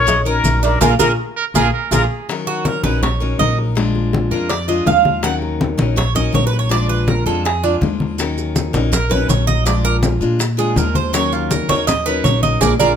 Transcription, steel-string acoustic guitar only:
0.07 muted steel-string acoustic guitar stroke
0.25 F#3 C#4 D#4 A#4
0.44 F#3 C#4 D#4 A#4
0.81 A#3 D4 F4
0.99 A#3 D4 F4
1.55 A#3 D4 F4
1.92 A#3 D4 F4
2.29 D#3 F#3 C#4 D#4 A#4
2.83 F#3 C#4 D#4 A#4
3.03 muted steel-string acoustic guitar stroke
3.20 F#3 C#4 D#4 A#4
3.40 F#3 C#4 D#4 A#4
3.75 F3 G#3 D4 F4
4.31 G#3 D4 F4
4.50 muted steel-string acoustic guitar stroke
4.68 G#3 D4 F4
4.86 F3 G#3 D4 F4
5.23 D#3 F#3 C#4 D#4 A#4
5.78 F#3 C#4 D#4 A#4
5.96 muted steel-string acoustic guitar stroke
6.15 F#3 C#4 D#4 A#4
6.32 F#3 C#4 D#4 A#4
6.69 F3 G#3 D4 F4
7.26 G#3 D4 F4
7.46 muted steel-string acoustic guitar stroke
7.64 G#3 D4 F4
7.81 F3 G#3 D4 F4
8.18 D#3 F#3 C#4 D#4 A#4
8.73 F#3 C#4 D#4 A#4
8.92 muted steel-string acoustic guitar stroke
9.10 F#3 C#4 D#4 A#4
9.28 F#3 C#4 D#4 A#4
9.65 F3 G#3 D4 F4
10.21 G#3 D4 F4
10.39 muted steel-string acoustic guitar stroke
10.57 G#3 D4 F4
10.76 F3 G#3 D4 F4
11.13 D#3 F#3 C#4 D#4 A#4
11.69 F#3 C#4 D#4 A#4
11.88 muted steel-string acoustic guitar stroke
12.07 F#3 C#4 D#4 A#4
12.25 F#3 C#4 D#4 A#4
12.62 A#3 D4 F4
12.80 A#3 D4 F4

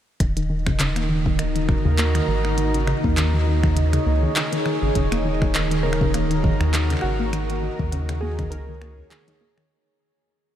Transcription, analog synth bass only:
0.20 D#1
1.85 D#2
2.28 G#1
3.04 D#2
4.06 C#2
4.82 G#1
4.95 D#1
6.61 D#2
7.03 G#1
7.79 D#2
8.52 C#2

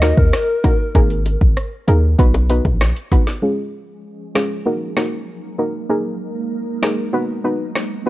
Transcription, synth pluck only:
0.02 A#3 D#4 F#4 A#4
0.64 A#3 D#4 F#4 A#4
0.95 A#3 D#4 G#4 A#4
1.87 A#3 D#4 G#4 A#4
2.18 B3 D#4 F#4 B4
2.49 B3 D#4 F#4 B4
3.11 B3 D#4 F#4 B4
3.42 G#3 C#4 F4 G#4
4.35 G#3 C#4 F4 G#4
4.66 A#3 D#4 F#4 A#4
4.97 A#3 D#4 F#4 A#4
5.58 A#3 D#4 F#4 A#4
5.89 A#3 D#4 G#4 A#4
6.82 A#3 D#4 G#4 A#4
7.13 B3 D#4 F#4 B4
7.44 B3 D#4 F#4 B4
8.06 B3 D#4 F#4

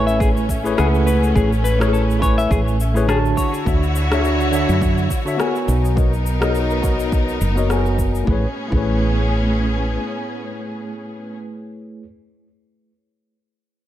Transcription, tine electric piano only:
Already playing: A3 E4 B4 C#5 G#5
0.64 A3 E4 G#4 B4 C#5
0.77 A3 E4 G#4 B4 F#5
1.34 A3 E4 G#4 B4 C#5
1.79 A3 E4 G#4 B4 C#5
2.20 A3 E4 B4 C#5 G#5
2.94 A3 E4 G#4 B4 C#5
3.06 D3 D4 F#4 C#5 A5
3.65 D3 D4 F#4 C#5 E5
4.11 D3 D4 F#4 C#5 E5
4.52 D3 D4 F#4 C#5 E5
5.25 D3 D4 F#4 C#5 E5
5.37 B3 F#4 A#4 C#5 G#5
5.95 B3 F#4 A#4 C#5 D#5
6.40 B3 F#4 A#4 C#5 D#5
6.82 B3 F#4 A#4 C#5 D#5
7.56 B3 F#4 A#4 C#5 D#5
7.69 B3 F#4 A#4 C#5 G#5
8.23 A3 E4
8.28 G#4 B4
8.33 C#5
8.68 A3 E4
8.73 G#4 B4
8.78 C#5

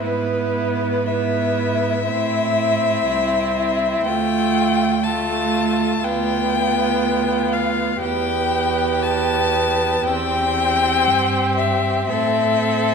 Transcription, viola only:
0.03 B3
1.07 B3
2.08 C4
4.06 A3
5.04 A3
6.03 B3
8.02 B3
10.07 C4
12.09 C4

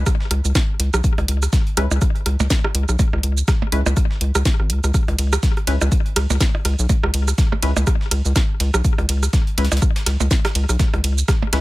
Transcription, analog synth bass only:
0.31 C#2
0.45 C#2
0.80 C#2
0.94 B1
1.18 C#2
1.28 C#2
1.77 C#2
1.91 C#2
2.26 C#2
2.40 C#2
2.75 C#2
2.89 B1
3.13 C#2
3.23 C#2
3.72 C#2
3.86 C#2
4.21 C#2
4.35 C#2
4.60 G#1
4.70 C#2
4.84 C#2
5.08 C#2
5.19 C#2
5.67 C#2
5.81 C#2
6.16 C#2
6.30 C#2
6.65 C#2
6.79 B1
7.03 C#2
7.14 C#2
7.63 C#2
7.77 C#2
8.11 C#2
8.25 C#2
8.60 C#2
8.74 B1
8.99 C#2
9.09 C#2
9.58 C#2
9.72 C#2
10.06 C#2
10.20 C#2
10.55 C#2
10.69 B1
10.94 C#2
11.04 C#2
11.53 C#2

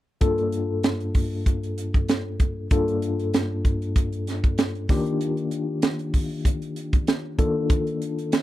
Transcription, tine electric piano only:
0.21 G2 A#3 D4 F4 A4
2.72 G2 A#3 D4 F4 A4
4.90 D#3 A#3 D4 F4 G4
7.38 D#3 A#3 D4 F4 A4

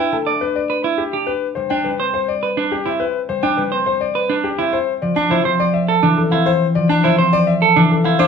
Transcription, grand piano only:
Already playing: G5
0.13 A4
0.41 B4
0.56 D5
0.98 G4
1.27 B4
1.55 C5
1.70 G5
1.84 B4
2.14 C5
2.28 D5
2.72 G4
2.86 E5
3.00 B4
3.29 C5
3.43 G5
3.57 B4
3.86 C5
4.01 D5
4.44 G4
4.58 E5
4.73 C5
5.02 D5
5.16 A5
5.30 C5
5.60 D5
5.74 E5
6.17 A4
6.31 F5
6.46 C5
6.75 D5
6.90 A5
7.04 C5
7.33 D5
7.47 E5
7.91 A4
8.04 F5
8.19 C5

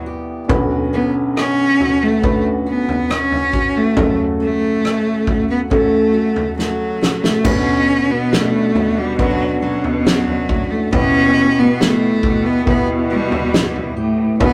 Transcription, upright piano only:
Already playing: B1 B2 B3 E4 D5 G5
0.48 B1 F#2 D3 C#4 F#4 B4
2.22 D3 C#4 F#4 B4
3.96 F#2 C#3 A3 C#4 F#4 A4
5.71 A3 C#4 F#4 A4
7.44 D3 C#4 F#4 B4
9.18 C#4 D4 F#4 B4
10.92 B2 B3 E4 G4 B4
12.65 B3 E4 G4 B4
14.40 D4 F#4 B4 C#5

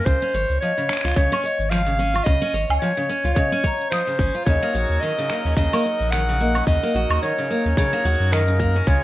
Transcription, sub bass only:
0.06 C#2
0.34 G#1
0.49 C#2
1.04 C#2
1.16 C#2
1.59 G#1
2.26 C#2
2.53 G#1
2.69 C#2
3.24 C#2
4.19 G#1
4.47 D#2
4.74 A#1
4.89 D#2
5.45 D#2
5.57 D#2
6.00 A#1
6.67 D#2
6.95 A#1
7.10 D#2
7.65 D#2
8.05 D#2
8.20 F#2
8.87 C#2

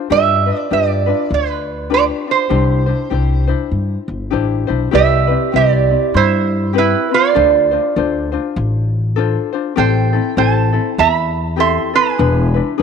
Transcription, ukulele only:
0.10 D4 F4 G4 B4
0.46 D4 F4 B4
0.70 D4 F4 G4 B4
1.06 D4 F4 B4
1.90 D4 F4 G4 B4
2.27 D4 F4
2.49 D4 E4 G4 C5
2.86 D4 E4 C5
3.10 D4 E4 G4 C5
3.47 D4 E4 C5
4.31 D4 E4 G4 C5
4.67 D4 E4 C5
4.91 C4 E4 G4 B4
5.27 C4 E4 B4
5.52 C4 E4 G4 B4
5.91 C4 E4
6.73 C4 E4 G4 B4
7.09 C4 B4
7.35 D4 F4 A4 C5
7.71 D4 F4 C5
7.96 D4 F4 A4 C5
8.32 D4 F4 C5
9.16 D4 F4 A4 C5
9.53 D4 F4 C5
9.76 C4 E4 G4 A4
10.13 C4 E4 A4
10.36 C4 E4 G4 A4
10.73 C4 E4 A4
11.56 C4 E4 G4 A4
11.94 C4 E4 A4
12.18 D4 E4 G#4 B4
12.54 D4 E4 B4
12.78 D4 G#4

